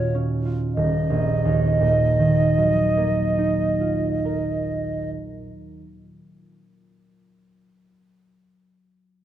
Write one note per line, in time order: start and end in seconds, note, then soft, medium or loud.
0.00 0.82 D#2 soft
0.00 0.81 A#2 soft
0.00 0.13 C#4 soft
0.00 0.44 F4 soft
0.00 3.45 F#4 soft
0.00 0.15 C#5 medium
0.15 0.81 C#4 soft
0.45 3.79 F4 soft
0.74 5.13 D#1 soft
0.74 5.10 D#5 soft
1.10 5.46 A#1 soft
1.45 5.81 D#2 soft
1.81 6.17 A#2 soft
2.19 6.55 D#3 soft
2.58 6.92 F#3 soft
2.97 6.92 A#3 soft
3.38 6.92 D#4 soft
3.81 6.92 F4 soft
4.25 6.93 A#4 soft